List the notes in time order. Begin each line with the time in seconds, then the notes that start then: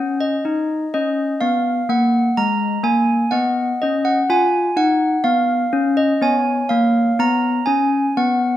Already playing: C#4 C#5 F#5
0.21 D#5
0.45 D#4 D#5
0.94 C#4 D#5
1.41 B3 F5
1.89 A#3 F#5
2.37 G#3 A#5
2.83 A#3 G#5
3.31 B3 D#5 F#5
3.82 C#4 D#5
4.05 F#5
4.30 F4 G#5
4.76 D#4 F#5
5.24 B3 F5
5.73 C#4
5.97 D#5
6.22 B3 C#5 G#5
6.69 A#3 F5
7.19 B3 A#5
7.66 C#4 G#5
8.17 B3 F#5